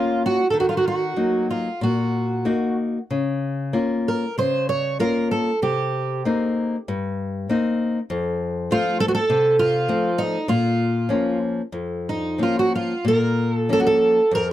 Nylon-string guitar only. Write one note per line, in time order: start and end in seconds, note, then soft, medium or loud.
0.00 0.41 A#3 soft
0.00 0.41 C#4 soft
0.00 0.41 F4 soft
0.54 1.14 D#3 medium
1.16 1.67 F#3 soft
1.16 1.67 A#3 soft
1.16 1.67 D#4 soft
1.81 2.44 A#2 medium
2.45 2.97 A#3 soft
2.45 2.97 D#4 soft
2.45 2.98 F#4 soft
3.11 3.73 C#3 medium
3.73 4.24 A#3 soft
3.73 4.24 C#4 soft
3.73 4.24 F4 soft
4.38 4.98 C#3 medium
4.99 5.49 A#3 soft
4.99 5.50 C#4 soft
4.99 5.50 F4 soft
5.62 6.23 C3 medium
6.25 6.75 A#3 soft
6.25 6.75 C4 soft
6.25 6.76 D#4 soft
6.88 7.47 G2 medium
7.49 7.98 A#3 soft
7.49 7.98 C4 soft
7.49 7.99 D#4 soft
8.10 8.69 F2 medium
8.71 9.18 F3 soft
8.71 9.19 A3 soft
8.71 9.19 C4 soft
9.30 9.87 C3 medium
9.88 10.37 F3 soft
9.88 10.37 A3 soft
9.88 10.37 C4 medium
10.48 11.08 A#2 medium
11.09 11.60 F3 soft
11.09 11.61 A#3 soft
11.09 11.61 C#4 soft
11.72 12.37 F2 medium
12.38 12.92 F3 soft
12.38 12.92 A#3 soft
12.38 12.93 C#4 soft
13.05 13.67 A#2 medium
13.69 14.19 F3 soft
13.69 14.19 A#3 soft
13.69 14.20 C#4 soft
14.31 14.52 F2 medium